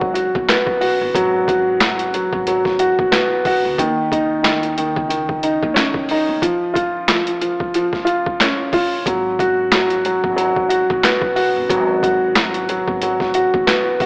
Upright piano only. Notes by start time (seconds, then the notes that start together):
Already playing: F#3 F#4
0.14 F#4
0.49 B3
0.81 F#4
1.15 F#3
1.49 F#4
1.81 F#3
2.14 F#3
2.48 F#3
2.80 F#4
3.12 B3
3.47 F#4
3.79 D#3
4.12 D#4
4.43 D#3
4.78 D#3
5.09 D#3
5.43 D#4
5.74 C#4
6.11 D#4
6.43 F3
6.74 F4
7.09 F3
7.41 F3
7.75 F3
8.05 F4
8.41 C#4
8.74 F4
9.07 F#3
9.40 F#4
9.74 F#3
10.06 F#3
10.36 F#3
10.69 F#4
11.04 B3
11.36 F#4
11.70 F#3
12.04 F#4
12.36 F#3
12.69 F#3
13.03 F#3
13.35 F#4
13.67 B3
14.02 F#4